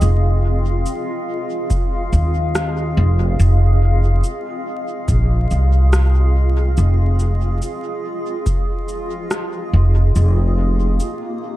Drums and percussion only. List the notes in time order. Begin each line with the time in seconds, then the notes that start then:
0.02 cabasa
0.86 cabasa
1.70 kick, cabasa
2.13 cabasa
2.55 cross-stick, cabasa
3.40 cabasa
4.24 cabasa
5.08 kick, cabasa
5.51 cabasa
5.93 cross-stick, cabasa
6.77 cabasa
7.20 cabasa
7.62 cabasa
8.46 kick, cabasa
8.89 cabasa
9.31 cross-stick, cabasa
10.16 cabasa
11.00 cabasa